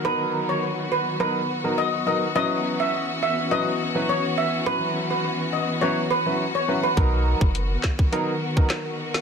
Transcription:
<<
  \new Staff \with { instrumentName = "Steel pan" } { \time 4/4 \key b \major \tempo 4 = 104 b'8 r16 cis''16 r8 b'16 r16 b'8. r16 dis''16 r16 dis''16 r16 | dis''8 r16 e''16 r8 e''16 r16 dis''8. r16 cis''16 r16 e''16 r16 | b'8 r16 b'16 r8 dis''16 r16 cis''16 r16 b'16 r8 cis''16 r16 b'16 | r1 | }
  \new Staff \with { instrumentName = "Grand piano" } { \time 4/4 \key b \major <fis b dis' ais'>4 r4 <fis b dis' ais'>16 r8 <fis b dis' ais'>16 r8 <fis b dis' ais'>16 r16 | <fis cis' e' b'>4 r4 <fis cis' e' b'>16 r8 <fis cis' e' b'>16 r4 | <fis cis' e' b'>4 r4 <fis cis' e' b'>16 r8 <fis cis' e' b'>16 r8 <fis cis' e' b'>16 r16 | <fis b dis' ais'>4 r4 <fis b dis' ais'>16 r8 <fis b dis' ais'>16 r4 | }
  \new Staff \with { instrumentName = "String section" } { \clef bass \time 4/4 \key b \major << { fis'1~ | fis'1~ | fis'1~ | fis'1 | } \\ { <dis fis b>1 | <e cis'>1~ | <e cis'>1 | <dis ais'>1 | } >> }
  \new Staff \with { instrumentName = "Sub bass" } { \clef bass \time 4/4 \key b \major r1 | r1 | r1 | b,,8. fis,,8. r2 r8 | }
  \new DrumStaff \with { instrumentName = "Drums" } \drummode { \time 4/4 r4 r4 r4 r4 | r4 r4 r4 r4 | r4 r4 r4 r4 | <hh bd>8. bd16 hh8 <hc bd sn>16 bd16 hh8. bd16 <hc hh ss sn>8. sn16 | }
>>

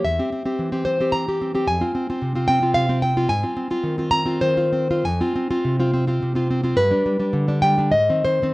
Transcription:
\new Staff \with { instrumentName = "Nylon-string guitar" } { \time 3/4 \key f \minor \tempo 4 = 108 << { e''4. c''8 bes''4 | aes''4. g''8 f''8 g''8 | \key aes \lydian aes''4. bes''8 c''4 | aes''2~ aes''8 r8 |
b'4. g''8 ees''8 c''8 | } \\ { e,16 <c' g'>16 c'16 <c' g'>16 e16 <c' g'>16 c'16 <c' g'>16 e16 <c' g'>16 c'16 <c' g'>16 | f,16 <c' f'>16 c'16 <c' f'>16 c16 <c' f'>16 c'16 <c' f'>16 c16 <c' f'>16 c'16 <c' f'>16 | aes,16 <c' f'>16 c'16 <c' f'>16 ees16 <c' f'>16 c'16 <c' f'>16 ees16 <c' f'>16 c'16 <c' f'>16 | f,16 <c' f'>16 c'16 <c' f'>16 c16 <c' f'>16 c'16 <c' f'>16 c16 <c' f'>16 c'16 <c' f'>16 |
g,16 <g d'>16 g16 <g d'>16 d16 <g d'>16 g16 <g d'>16 aes,16 <ees c'>16 ees16 <ees c'>16 | } >> }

